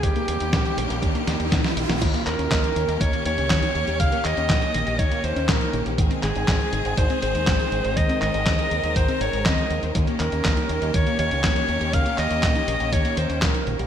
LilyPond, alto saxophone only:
\new Staff \with { instrumentName = "Alto saxophone" } { \time 4/4 \key ees \mixolydian \tempo 4 = 121 g'2. r4 | r8 bes'4. des''8 des''4. | f''8 ees''4. des''8 c''8 bes'8. r16 | r8 aes'4. c''8 c''4. |
ees''8 ees''4. c''8 des''8 ees''8. r16 | r8 bes'4. des''8 des''4. | f''8 ees''4. des''8 c''8 bes'8. r16 | }